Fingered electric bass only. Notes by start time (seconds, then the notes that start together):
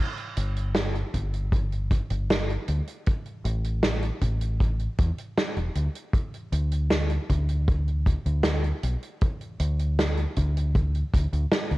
0.37 G1
1.14 G1
2.10 G1
2.68 D2
3.45 A1
4.22 A1
4.99 E2
5.56 E1
5.75 D2
6.52 D2
7.30 D2
8.26 D2
8.83 B1
9.60 D2
10.37 D2
11.14 D2
11.33 D2
11.71 D2